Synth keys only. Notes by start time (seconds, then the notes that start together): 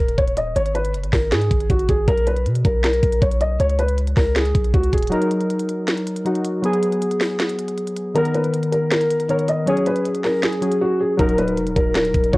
5.10 F#3 D#4 A#4
6.25 F#3 D#4 F#4
6.62 F#3 B3 G#4
8.14 D#3 B3 A#4
9.29 D#3 B3 A#4
9.66 F#3 C#4 G#4
10.61 F#3 C#4 G#4
11.17 F#3 D#4 A#4
12.32 F#3 D#4 F#4